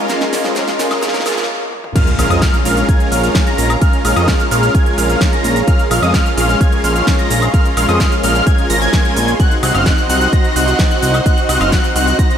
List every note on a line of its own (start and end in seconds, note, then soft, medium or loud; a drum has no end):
0.00 1.45 G#4 medium
0.00 1.45 C#5 medium
0.00 1.46 D#5 medium
0.00 1.45 A#5 medium
0.00 riser medium
0.08 0.54 C#3 medium
0.08 0.54 G#3 medium
0.08 0.24 G#3 loud
0.08 0.54 A#3 medium
0.08 0.24 C#4 medium
0.08 0.24 F4 medium
0.08 0.55 F4 medium
0.08 0.24 A#4 medium
0.08 0.24 F5 loud
0.08 snare medium
0.08 closed hi-hat medium
0.08 cabasa soft
0.21 snare medium
0.21 closed hi-hat soft
0.33 0.42 A#1 loud
0.33 0.43 G#3 medium
0.33 0.43 C#4 medium
0.33 0.43 F4 medium
0.33 0.43 A#4 medium
0.33 0.43 F5 loud
0.33 snare loud
0.33 open hi-hat loud
0.33 cabasa medium
0.44 0.63 F2 loud
0.44 0.54 G#3 medium
0.44 0.54 C#4 medium
0.44 0.54 F4 medium
0.44 0.54 A#4 medium
0.44 0.54 D#5 medium
0.44 snare medium
0.44 closed hi-hat soft
0.44 cabasa soft
0.55 1.00 C#3 medium
0.55 1.01 G#3 medium
0.55 0.70 G#3 medium
0.55 1.01 A#3 medium
0.55 0.70 C#4 medium
0.55 0.70 F4 medium
0.55 1.01 F4 medium
0.55 0.70 A#4 medium
0.55 0.70 F5 loud
0.55 snare medium
0.55 closed hi-hat medium
0.55 cabasa soft
0.68 snare medium
0.68 closed hi-hat soft
0.68 cabasa soft
0.79 0.98 A#1 medium
0.79 0.89 G#3 medium
0.79 0.89 C#4 medium
0.79 0.89 F4 medium
0.79 0.89 A#4 medium
0.79 0.89 F5 loud
0.79 snare loud
0.79 open hi-hat loud
0.79 cabasa medium
0.91 1.01 G#3 medium
0.91 1.01 C#4 medium
0.91 1.01 F4 medium
0.91 1.01 A#4 medium
0.91 1.01 D#5 loud
0.91 snare medium
0.91 closed hi-hat soft
0.91 cabasa soft
0.91 high woodblock medium
1.01 1.23 C#3 medium
1.01 1.24 G#3 medium
1.01 1.17 G#3 loud
1.01 1.24 A#3 medium
1.01 1.17 C#4 medium
1.01 1.17 F4 medium
1.01 1.25 F4 medium
1.01 1.17 A#4 medium
1.01 1.17 F5 loud
1.01 snare loud
1.01 closed hi-hat medium
1.01 cabasa soft
1.08 snare medium
1.14 snare medium
1.14 closed hi-hat soft
1.20 snare medium
1.25 1.47 C#3 medium
1.25 1.47 G#3 medium
1.25 1.40 G#3 loud
1.25 1.47 A#3 medium
1.25 1.40 C#4 medium
1.25 1.40 F4 medium
1.25 1.48 F4 loud
1.25 1.40 A#4 medium
1.25 1.40 F5 loud
1.25 snare loud
1.25 open hi-hat loud
1.25 cabasa medium
1.25 high woodblock medium
1.32 snare medium
1.37 snare loud
1.37 closed hi-hat soft
1.37 cabasa soft
1.43 snare medium
1.72 high tom medium
1.84 mid tom medium
1.96 2.10 G#3 loud
1.96 2.10 C#4 medium
1.96 2.10 F4 medium
1.96 9.36 G#4 medium
1.96 2.10 A#4 medium
1.96 9.36 C#5 medium
1.96 9.36 F5 medium
1.96 2.10 F5 loud
1.96 5.64 A#5 medium
1.96 2.10 F6 loud
1.96 kick loud
1.96 closed hi-hat medium
1.96 crash loud
1.96 impact medium
1.96 cabasa soft
2.07 closed hi-hat soft
2.19 2.28 A#1 loud
2.19 2.29 G#3 medium
2.19 2.29 C#4 medium
2.19 2.29 F4 medium
2.19 2.29 A#4 medium
2.19 2.29 F5 loud
2.19 2.29 F6 loud
2.19 open hi-hat loud
2.19 cabasa medium
2.19 high woodblock medium
2.30 2.49 F2 loud
2.30 2.40 G#3 medium
2.30 2.40 C#4 medium
2.30 2.40 F4 medium
2.30 2.40 A#4 medium
2.30 2.40 D#5 medium
2.30 2.40 D#6 loud
2.30 closed hi-hat soft
2.30 cabasa soft
2.30 high woodblock medium
2.42 2.56 G#3 loud
2.42 2.56 F6 loud
2.42 kick loud
2.42 snare loud
2.42 closed hi-hat loud
2.42 cabasa soft
2.54 closed hi-hat soft
2.54 cabasa soft
2.65 2.84 A#1 loud
2.65 2.86 G#3 medium
2.65 2.86 C#4 medium
2.65 2.86 F4 medium
2.65 2.86 A#4 medium
2.65 2.86 F5 loud
2.65 2.86 F6 loud
2.65 open hi-hat loud
2.65 cabasa medium
2.77 closed hi-hat soft
2.77 cabasa soft
2.89 3.09 G#3 medium
2.89 3.09 C#4 medium
2.89 3.09 F4 medium
2.89 3.09 A#4 medium
2.89 3.09 G#5 medium
2.89 3.09 G#6 medium
2.89 kick loud
2.89 closed hi-hat medium
2.89 cabasa soft
3.00 closed hi-hat soft
3.12 3.30 A#1 medium
3.12 3.22 G#3 medium
3.12 3.22 C#4 medium
3.12 3.22 F4 medium
3.12 3.22 A#4 medium
3.12 3.22 F5 medium
3.12 3.22 F6 medium
3.12 open hi-hat loud
3.12 cabasa medium
3.23 3.44 G#3 medium
3.23 3.44 C#4 medium
3.23 3.44 F4 medium
3.23 3.44 A#4 medium
3.23 3.44 F5 medium
3.23 3.44 F6 medium
3.23 closed hi-hat soft
3.23 cabasa soft
3.35 kick loud
3.35 snare loud
3.35 closed hi-hat medium
3.35 cabasa soft
3.47 3.57 G#3 medium
3.47 3.57 C#4 medium
3.47 3.57 F4 medium
3.47 3.57 A#4 medium
3.47 3.57 A#5 medium
3.47 3.57 A#6 medium
3.47 closed hi-hat soft
3.58 3.77 A#1 medium
3.58 3.72 G#3 medium
3.58 3.72 C#4 medium
3.58 3.72 F4 medium
3.58 3.72 A#4 medium
3.58 3.72 A#5 medium
3.58 3.72 A#6 medium
3.58 open hi-hat loud
3.58 cabasa medium
3.70 closed hi-hat soft
3.70 cabasa soft
3.70 high woodblock medium
3.81 3.96 G#3 loud
3.81 3.96 C#4 medium
3.81 3.96 F4 medium
3.81 3.96 A#4 medium
3.81 3.96 F5 loud
3.81 3.96 F6 loud
3.81 kick loud
3.81 closed hi-hat medium
3.81 cabasa soft
3.93 closed hi-hat soft
4.05 4.14 A#1 loud
4.05 4.15 G#3 medium
4.05 4.15 C#4 medium
4.05 4.15 F4 medium
4.05 4.15 A#4 medium
4.05 4.15 F5 loud
4.05 4.15 F6 loud
4.05 open hi-hat loud
4.05 cabasa medium
4.05 high woodblock medium
4.16 4.35 F2 loud
4.16 4.26 G#3 medium
4.16 4.26 C#4 medium
4.16 4.26 F4 medium
4.16 4.26 A#4 medium
4.16 4.26 D#5 medium
4.16 4.26 D#6 medium
4.16 closed hi-hat soft
4.16 cabasa soft
4.16 high woodblock medium
4.28 4.42 G#3 medium
4.28 4.42 C#4 medium
4.28 4.42 F4 medium
4.28 4.42 F6 loud
4.28 kick loud
4.28 snare loud
4.28 closed hi-hat medium
4.28 cabasa soft
4.40 closed hi-hat soft
4.40 cabasa soft
4.51 4.70 A#1 loud
4.51 4.72 G#3 loud
4.51 4.72 C#4 medium
4.51 4.72 F4 medium
4.51 4.72 A#4 medium
4.51 4.72 F5 loud
4.51 4.72 F6 loud
4.51 open hi-hat loud
4.51 cabasa medium
4.63 closed hi-hat soft
4.63 cabasa soft
4.75 4.95 G#3 medium
4.75 4.95 C#4 medium
4.75 4.95 F4 medium
4.75 4.95 G#6 medium
4.75 kick loud
4.75 closed hi-hat medium
4.75 cabasa soft
4.86 closed hi-hat soft
4.98 5.16 A#1 loud
4.98 5.08 G#3 medium
4.98 5.08 C#4 medium
4.98 5.08 F4 medium
4.98 5.08 A#4 medium
4.98 5.08 F5 medium
4.98 5.08 F6 medium
4.98 open hi-hat loud
4.98 cabasa medium
5.09 5.30 G#3 medium
5.09 5.30 C#4 medium
5.09 5.30 F4 medium
5.09 5.30 A#4 medium
5.09 5.30 F5 medium
5.09 5.30 F6 medium
5.09 closed hi-hat soft
5.09 cabasa soft
5.21 kick loud
5.21 snare loud
5.21 closed hi-hat loud
5.21 cabasa soft
5.33 5.43 G#3 medium
5.33 5.43 C#4 medium
5.33 5.43 F4 medium
5.33 5.43 A#4 medium
5.33 5.43 A#5 medium
5.33 5.43 A#6 medium
5.33 closed hi-hat soft
5.44 5.63 A#1 medium
5.44 5.58 G#3 medium
5.44 5.58 C#4 medium
5.44 5.58 F4 medium
5.44 5.58 A#4 medium
5.44 5.58 A#5 medium
5.44 5.58 A#6 medium
5.44 open hi-hat loud
5.44 cabasa medium
5.56 closed hi-hat soft
5.56 cabasa soft
5.68 5.82 G#3 loud
5.68 5.82 C#4 medium
5.68 5.82 F4 medium
5.68 5.82 A#4 medium
5.68 5.82 F5 loud
5.68 12.38 C6 medium
5.68 5.82 F6 loud
5.68 kick loud
5.68 closed hi-hat medium
5.68 cabasa soft
5.79 closed hi-hat soft
5.91 6.00 A#1 loud
5.91 6.01 G#3 medium
5.91 6.01 C#4 medium
5.91 6.01 F4 medium
5.91 6.01 A#4 medium
5.91 6.01 F5 loud
5.91 6.01 F6 loud
5.91 open hi-hat loud
5.91 cabasa medium
5.91 high woodblock medium
6.03 6.21 F2 loud
6.03 6.12 G#3 medium
6.03 6.12 C#4 medium
6.03 6.12 F4 medium
6.03 6.12 A#4 medium
6.03 6.12 D#5 medium
6.03 6.12 D#6 loud
6.03 closed hi-hat soft
6.03 cabasa soft
6.03 high woodblock medium
6.14 6.28 G#3 loud
6.14 6.28 C#4 medium
6.14 6.28 F4 medium
6.14 6.28 F6 loud
6.14 kick loud
6.14 snare loud
6.14 closed hi-hat medium
6.14 cabasa soft
6.26 closed hi-hat soft
6.26 cabasa soft
6.37 6.56 A#1 loud
6.37 6.58 G#3 loud
6.37 6.58 C#4 medium
6.37 6.58 F4 medium
6.37 6.58 A#4 medium
6.37 6.58 F5 loud
6.37 6.58 F6 loud
6.37 open hi-hat loud
6.37 cabasa medium
6.49 closed hi-hat soft
6.49 cabasa soft
6.61 6.81 G#3 medium
6.61 6.81 C#4 medium
6.61 6.81 F4 medium
6.61 6.81 G#5 medium
6.61 6.81 G#6 medium
6.61 kick loud
6.61 closed hi-hat medium
6.61 cabasa soft
6.72 closed hi-hat soft
6.84 7.02 A#1 loud
6.84 6.94 G#3 medium
6.84 6.94 C#4 medium
6.84 6.94 F4 medium
6.84 6.94 A#4 medium
6.84 6.94 F5 medium
6.84 6.94 F6 medium
6.84 open hi-hat loud
6.84 cabasa medium
6.96 7.16 G#3 medium
6.96 7.16 C#4 medium
6.96 7.16 F4 medium
6.96 7.16 A#4 medium
6.96 7.16 F5 medium
6.96 7.16 F6 medium
6.96 closed hi-hat soft
6.96 cabasa soft
7.07 kick loud
7.07 snare loud
7.07 closed hi-hat medium
7.07 cabasa soft
7.19 7.29 G#3 medium
7.19 7.29 C#4 medium
7.19 7.29 F4 medium
7.19 7.29 A#4 medium
7.19 7.29 A#5 medium
7.19 7.29 A#6 medium
7.19 closed hi-hat soft
7.30 7.49 A#1 medium
7.30 7.45 G#3 medium
7.30 7.45 C#4 medium
7.30 7.45 F4 medium
7.30 7.45 A#4 medium
7.30 7.45 A#5 medium
7.30 7.44 A#6 medium
7.30 open hi-hat loud
7.30 cabasa medium
7.42 closed hi-hat soft
7.42 cabasa soft
7.42 high woodblock medium
7.54 7.68 G#3 loud
7.54 7.68 C#4 medium
7.54 7.68 F4 medium
7.54 7.68 A#4 medium
7.54 7.68 F5 loud
7.54 7.68 F6 loud
7.54 kick loud
7.54 closed hi-hat medium
7.54 cabasa soft
7.65 closed hi-hat soft
7.77 7.86 A#1 loud
7.77 7.87 G#3 medium
7.77 7.87 C#4 medium
7.77 7.87 F4 medium
7.77 7.87 A#4 medium
7.77 7.87 F5 loud
7.77 7.87 F6 loud
7.77 open hi-hat loud
7.77 cabasa medium
7.77 high woodblock medium
7.89 8.07 F2 loud
7.89 7.98 G#3 medium
7.89 7.98 C#4 medium
7.89 7.98 F4 medium
7.89 7.98 A#4 medium
7.89 7.98 D#5 loud
7.89 7.99 D#6 medium
7.89 closed hi-hat soft
7.89 cabasa soft
7.89 high woodblock medium
8.00 8.14 G#3 loud
8.00 8.14 C#4 medium
8.00 8.14 F4 medium
8.00 8.14 F5 loud
8.00 8.14 F6 loud
8.00 kick loud
8.00 snare loud
8.00 closed hi-hat medium
8.00 cabasa soft
8.12 closed hi-hat soft
8.12 cabasa soft
8.23 8.42 A#1 loud
8.23 8.44 G#3 loud
8.23 8.44 C#4 medium
8.23 8.44 F4 medium
8.23 8.44 A#4 medium
8.23 8.44 F5 loud
8.23 8.44 F6 loud
8.23 open hi-hat loud
8.23 cabasa medium
8.35 closed hi-hat soft
8.35 cabasa soft
8.47 8.67 G#3 medium
8.47 8.67 C#4 medium
8.47 8.67 F4 medium
8.47 8.67 A#4 medium
8.47 8.67 G#5 medium
8.47 8.67 G#6 medium
8.47 kick loud
8.47 closed hi-hat medium
8.47 cabasa soft
8.58 closed hi-hat soft
8.70 8.88 G#1 loud
8.70 8.80 G#3 loud
8.70 8.80 C#4 medium
8.70 8.80 F4 medium
8.70 8.80 A#4 medium
8.70 8.80 A#5 loud
8.70 8.80 A#6 loud
8.70 open hi-hat loud
8.70 cabasa medium
8.82 8.90 G#3 loud
8.82 8.90 C#4 medium
8.82 8.90 F4 medium
8.82 8.90 A#4 medium
8.82 8.90 G#5 loud
8.82 8.90 G#6 loud
8.82 closed hi-hat soft
8.82 cabasa soft
8.93 9.14 G#3 medium
8.93 9.14 C#4 medium
8.93 9.14 F4 medium
8.93 9.14 A#4 medium
8.93 9.14 G#5 loud
8.93 9.14 G#6 medium
8.93 kick loud
8.93 snare loud
8.93 closed hi-hat medium
8.93 cabasa soft
9.05 closed hi-hat soft
9.16 9.35 A#1 medium
9.16 9.31 G#3 medium
9.16 9.31 C#4 medium
9.16 9.31 F4 medium
9.16 9.31 A#4 medium
9.16 9.31 G#5 loud
9.16 9.31 G#6 medium
9.16 open hi-hat loud
9.16 cabasa medium
9.28 closed hi-hat soft
9.28 cabasa soft
9.40 9.54 C4 loud
9.40 9.54 D#4 medium
9.40 9.54 F#4 medium
9.40 12.38 F#4 medium
9.40 12.38 C5 medium
9.40 9.54 D#5 medium
9.40 12.38 D#5 medium
9.40 9.54 F#5 loud
9.40 9.54 F#6 loud
9.40 kick loud
9.40 closed hi-hat medium
9.40 cabasa soft
9.51 closed hi-hat soft
9.63 9.72 C2 loud
9.63 9.73 C4 medium
9.63 9.73 D#4 medium
9.63 9.73 F#4 medium
9.63 9.73 D#5 medium
9.63 9.73 F#5 loud
9.63 9.73 F#6 medium
9.63 open hi-hat loud
9.63 cabasa medium
9.63 high woodblock medium
9.75 9.93 F#1 loud
9.75 9.85 C4 medium
9.75 9.85 D#4 medium
9.75 9.85 F#4 medium
9.75 9.85 D#5 medium
9.75 9.85 F5 medium
9.75 9.85 F6 medium
9.75 cabasa soft
9.75 high woodblock medium
9.86 10.00 C4 medium
9.86 10.00 D#4 medium
9.86 10.00 F#4 medium
9.86 10.00 D#5 medium
9.86 10.00 F#5 loud
9.86 10.00 F#6 loud
9.86 kick loud
9.86 snare loud
9.86 closed hi-hat medium
9.86 cabasa soft
9.98 closed hi-hat soft
9.98 cabasa soft
10.09 10.28 C2 medium
10.09 10.30 C4 medium
10.09 10.30 D#4 medium
10.09 10.30 F#4 medium
10.09 10.30 D#5 medium
10.09 10.30 F#5 loud
10.09 10.30 F#6 loud
10.09 open hi-hat loud
10.09 cabasa medium
10.21 closed hi-hat soft
10.21 cabasa soft
10.33 10.53 C4 medium
10.33 10.53 D#4 medium
10.33 10.53 F#4 medium
10.33 10.53 D#5 medium
10.33 10.53 A#5 medium
10.33 10.53 A#6 medium
10.33 kick loud
10.33 closed hi-hat medium
10.33 cabasa soft
10.44 closed hi-hat soft
10.56 10.74 C2 loud
10.56 10.66 C4 medium
10.56 10.66 D#4 medium
10.56 10.66 F#4 medium
10.56 10.66 D#5 medium
10.56 10.66 F#5 medium
10.56 10.66 F#6 medium
10.56 open hi-hat loud
10.56 cabasa medium
10.68 10.88 C4 medium
10.68 10.88 D#4 medium
10.68 10.88 F#4 medium
10.68 10.88 D#5 medium
10.68 10.88 F#5 medium
10.68 10.88 F#6 medium
10.68 closed hi-hat soft
10.68 cabasa soft
10.79 kick loud
10.79 snare loud
10.79 closed hi-hat medium
10.79 cabasa soft
10.91 11.01 C4 medium
10.91 11.01 D#4 medium
10.91 11.01 F#4 medium
10.91 11.01 D#5 medium
10.91 11.01 F#5 medium
10.91 11.01 F#6 medium
10.91 closed hi-hat soft
11.02 11.21 C2 medium
11.02 11.17 C4 medium
11.02 11.17 D#4 medium
11.02 11.17 F#4 medium
11.02 11.17 D#5 medium
11.02 11.17 F#5 medium
11.02 11.17 F#6 medium
11.02 open hi-hat loud
11.02 cabasa medium
11.14 closed hi-hat soft
11.14 cabasa soft
11.14 high woodblock medium
11.26 11.40 C4 medium
11.26 11.40 D#4 medium
11.26 11.40 F#4 medium
11.26 11.40 D#5 medium
11.26 11.40 F#5 loud
11.26 11.40 F#6 loud
11.26 kick loud
11.26 closed hi-hat loud
11.26 cabasa soft
11.38 closed hi-hat soft
11.49 11.58 C2 medium
11.49 11.59 C4 medium
11.49 11.59 D#4 medium
11.49 11.59 F#4 medium
11.49 11.59 D#5 medium
11.49 11.59 F#5 loud
11.49 11.59 F#6 loud
11.49 open hi-hat loud
11.49 cabasa medium
11.49 high woodblock medium
11.61 11.79 F#1 loud
11.61 11.71 C4 medium
11.61 11.71 D#4 medium
11.61 11.71 F#4 medium
11.61 11.71 D#5 medium
11.61 11.71 F5 medium
11.61 11.71 F6 loud
11.61 cabasa soft
11.61 high woodblock medium
11.72 11.86 C4 loud
11.72 11.86 D#4 medium
11.72 11.86 F#4 medium
11.72 11.86 D#5 medium
11.72 11.86 F#5 loud
11.72 11.86 F#6 loud
11.72 kick loud
11.72 snare loud
11.72 closed hi-hat medium
11.72 cabasa soft
11.84 closed hi-hat soft
11.84 cabasa soft
11.95 12.14 C2 loud
11.95 12.16 C4 loud
11.95 12.16 D#4 medium
11.95 12.16 F#4 medium
11.95 12.16 D#5 medium
11.95 12.16 F#5 loud
11.95 12.16 F#6 loud
11.95 open hi-hat loud
11.95 cabasa medium
12.07 closed hi-hat soft
12.07 cabasa soft
12.19 12.38 C4 medium
12.19 12.38 D#4 medium
12.19 12.38 F#4 medium
12.19 12.38 D#5 medium
12.19 12.38 A#5 medium
12.19 12.38 A#6 medium
12.19 kick loud
12.19 closed hi-hat medium
12.19 cabasa soft
12.31 closed hi-hat soft